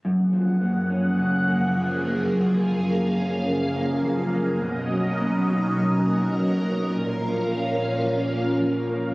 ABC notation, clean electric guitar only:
X:1
M:4/4
L:1/8
Q:1/4=105
K:F#
V:1 name="Clean electric guitar" clef=bass
F,, E, A, C C, A, E, A, | F,, E, A, C C, A, E, A, | B,, F, A, D F, A, F, A, | A,, E, A, C E, A, E, A, |]